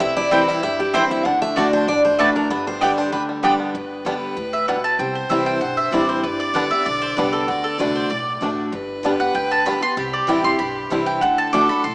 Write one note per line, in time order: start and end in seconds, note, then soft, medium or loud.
0.00 0.42 C2 medium
0.00 0.60 C3 medium
0.00 0.45 C4 medium
0.00 1.25 E4 loud
0.00 0.16 E5 loud
0.17 0.60 E4 medium
0.17 0.31 D5 loud
0.31 0.61 E3 loud
0.31 0.62 G3 loud
0.31 0.41 C4 loud
0.31 0.62 C4 loud
0.31 0.41 E4 medium
0.31 0.62 E4 loud
0.31 0.62 G4 medium
0.31 0.48 B4 medium
0.31 0.41 C5 loud
0.31 0.42 G5 loud
0.48 0.78 G3 medium
0.48 0.63 D5 loud
0.63 1.05 G1 medium
0.63 1.22 G2 medium
0.63 1.07 G4 medium
0.63 0.79 E5 loud
0.79 1.22 G3 medium
0.79 0.94 G4 medium
0.93 1.24 E3 medium
0.93 1.24 G3 loud
0.93 1.03 C4 loud
0.93 1.24 C4 loud
0.93 1.04 E4 loud
0.93 1.25 E4 medium
0.93 1.04 C5 loud
0.93 1.10 C5 medium
0.93 1.04 G5 loud
1.11 1.25 C4 medium
1.11 1.26 E5 medium
1.25 1.67 D2 loud
1.25 1.55 D3 medium
1.25 2.46 D4 loud
1.25 1.57 D4 medium
1.25 1.41 F#5 loud
1.42 1.85 A3 medium
1.42 1.57 E5 loud
1.56 1.86 D3 medium
1.56 1.66 A3 medium
1.56 1.87 A3 loud
1.56 1.73 D4 medium
1.56 1.87 D4 loud
1.56 1.66 F#4 medium
1.56 1.87 F#4 loud
1.56 1.66 D5 medium
1.56 1.73 D5 medium
1.56 1.66 A5 loud
1.73 1.88 D4 medium
1.73 1.88 C5 loud
1.87 2.30 A1 medium
1.87 2.47 A2 medium
1.87 2.19 D4 medium
1.87 2.04 D5 medium
2.05 2.47 A3 medium
2.05 2.19 C5 medium
2.18 2.48 D3 medium
2.18 2.28 A3 loud
2.18 2.49 A3 medium
2.18 2.35 D4 medium
2.18 2.49 D4 medium
2.18 2.29 F#4 loud
2.18 2.50 F#4 loud
2.18 2.35 B4 medium
2.18 2.29 D5 loud
2.18 2.29 A5 loud
2.35 2.50 D4 medium
2.35 2.50 A#4 medium
2.50 2.92 G1 medium
2.50 3.10 G2 medium
2.50 2.95 B3 medium
2.50 3.56 D4 medium
2.50 2.66 B4 medium
2.67 3.10 G3 medium
2.67 2.82 C5 medium
2.81 3.11 D3 loud
2.81 3.12 G3 loud
2.81 2.91 B3 medium
2.81 3.12 B3 medium
2.81 2.91 G4 medium
2.81 3.11 G4 medium
2.81 3.12 G4 loud
2.81 2.98 D5 loud
2.81 2.91 D5 loud
2.81 2.91 G5 loud
2.98 3.41 D4 medium
2.98 3.12 C5 medium
3.12 3.55 D2 medium
3.12 3.42 D3 medium
3.12 3.57 G4 medium
3.12 3.22 B4 medium
3.29 3.72 G3 medium
3.43 3.73 D3 medium
3.43 3.73 G3 medium
3.43 3.53 B3 medium
3.43 3.74 B3 medium
3.43 3.75 D4 medium
3.43 3.53 G4 medium
3.43 3.74 G4 loud
3.43 3.53 D5 loud
3.43 3.54 G5 loud
3.60 3.75 B3 medium
3.74 4.17 G1 medium
3.74 4.34 G2 medium
3.74 5.02 B4 loud
4.05 4.35 D3 medium
4.05 4.36 G3 loud
4.05 4.13 G3 medium
4.05 4.36 B3 loud
4.05 4.13 B3 medium
4.05 4.14 D4 medium
4.05 4.36 G4 medium
4.37 4.79 D2 medium
4.37 4.67 A2 medium
4.53 4.68 E5 medium
4.68 4.98 B2 medium
4.68 4.76 G3 medium
4.68 4.76 B3 medium
4.68 4.76 D4 medium
4.68 4.84 F#5 medium
4.84 4.99 A5 loud
4.99 5.20 C2 medium
4.99 5.59 C3 medium
4.99 6.25 C5 loud
4.99 5.15 G5 medium
5.15 5.30 C5 medium
5.29 5.57 C2 medium
5.29 5.60 E3 loud
5.29 5.60 G3 medium
5.29 5.38 G3 medium
5.29 5.60 C4 loud
5.29 5.38 C4 medium
5.29 5.61 E4 loud
5.29 5.39 E4 medium
5.29 5.46 E5 medium
5.46 5.61 G5 medium
5.61 5.88 B1 medium
5.61 6.21 G2 medium
5.61 5.77 F#5 medium
5.77 5.92 E5 medium
5.91 6.19 A1 medium
5.91 6.22 E3 medium
5.91 6.22 G3 medium
5.91 6.00 G3 medium
5.91 6.23 C4 medium
5.91 6.01 C4 medium
5.91 6.23 E4 loud
5.91 6.01 E4 medium
5.91 6.08 D5 medium
6.09 6.23 C5 medium
6.23 6.66 G1 loud
6.23 6.83 G2 medium
6.23 6.39 B4 medium
6.23 7.48 D5 loud
6.40 6.55 D5 loud
6.54 6.70 D3 loud
6.54 6.71 G3 loud
6.54 6.63 G3 medium
6.54 6.71 B3 loud
6.54 6.63 B3 medium
6.54 6.63 D4 medium
6.54 6.69 G4 loud
6.54 6.70 F#5 medium
6.70 6.86 B3 soft
6.70 6.85 G4 medium
6.70 6.86 E5 medium
6.85 7.13 B1 medium
6.85 7.15 D3 medium
6.85 7.01 D5 medium
7.02 7.16 C5 loud
7.17 7.44 C2 medium
7.17 7.47 D3 medium
7.17 7.47 G3 medium
7.17 7.25 G3 medium
7.17 7.48 B3 loud
7.17 7.25 B3 medium
7.17 7.25 D4 medium
7.17 7.48 G4 medium
7.17 7.32 B4 medium
7.33 7.48 A4 medium
7.48 7.70 D2 medium
7.48 7.77 D3 medium
7.48 7.64 F#4 medium
7.48 8.54 D5 loud
7.64 7.79 A4 medium
7.78 8.06 C2 medium
7.78 8.09 D3 medium
7.78 8.09 A3 loud
7.78 7.87 A3 medium
7.78 8.10 D4 loud
7.78 7.88 D4 medium
7.78 8.10 F#4 loud
7.78 7.95 B4 medium
7.95 8.10 C5 medium
8.10 8.37 B1 medium
8.10 8.70 A2 medium
8.10 9.00 D5 medium
8.41 8.68 A1 medium
8.41 8.71 D3 medium
8.41 8.72 A3 medium
8.41 8.49 A3 medium
8.41 8.72 D4 loud
8.41 8.50 D4 medium
8.41 8.72 F#4 medium
8.72 9.14 G1 medium
8.72 9.32 G2 medium
8.72 9.93 B4 loud
9.03 9.19 D3 medium
9.03 9.20 G3 loud
9.03 9.12 G3 medium
9.03 9.20 B3 loud
9.03 9.12 B3 medium
9.03 9.12 D4 medium
9.03 9.19 G4 loud
9.20 9.35 B3 soft
9.20 9.34 G4 medium
9.20 9.34 F#5 loud
9.34 9.77 D2 medium
9.34 9.64 D3 medium
9.34 9.51 G5 medium
9.51 9.66 A5 loud
9.65 9.82 D3 medium
9.65 9.82 G3 medium
9.65 9.74 G3 medium
9.65 9.82 B3 medium
9.65 9.74 B3 medium
9.65 9.74 D4 medium
9.65 9.80 G4 loud
9.65 9.82 B5 loud
9.81 9.97 B3 soft
9.81 9.96 G4 medium
9.81 9.97 C6 loud
9.97 10.18 C2 medium
9.97 10.57 C3 medium
9.97 11.24 G4 medium
9.97 10.13 B5 loud
10.13 10.28 D5 medium
10.27 10.55 A1 medium
10.27 10.43 E3 loud
10.27 10.44 G3 loud
10.27 10.36 G3 medium
10.27 10.44 C4 loud
10.27 10.36 C4 medium
10.27 10.42 E4 loud
10.27 10.36 E4 medium
10.27 10.44 G5 loud
10.44 10.60 C4 soft
10.44 10.59 E4 medium
10.44 10.58 C6 loud
10.59 10.86 B1 medium
10.59 11.19 G2 medium
10.59 11.03 B5 medium
10.90 11.17 C2 medium
10.90 11.20 E3 medium
10.90 11.21 G3 medium
10.90 10.98 G3 medium
10.90 11.21 C4 loud
10.90 10.99 C4 medium
10.90 10.99 E4 medium
10.90 11.21 E4 medium
11.06 11.21 G5 loud
11.21 11.64 D2 medium
11.21 11.51 D3 medium
11.21 11.95 A4 loud
11.21 11.37 F#5 medium
11.38 11.52 A5 loud
11.53 11.69 D3 medium
11.53 11.69 A3 loud
11.53 11.61 A3 medium
11.53 11.69 D4 loud
11.53 11.61 D4 medium
11.53 11.68 F#4 loud
11.53 11.69 D6 loud
11.69 11.85 D4 soft
11.69 11.84 F#4 medium
11.69 11.84 B5 medium
11.84 11.95 B1 medium
11.84 11.95 A2 medium
11.84 11.95 C6 loud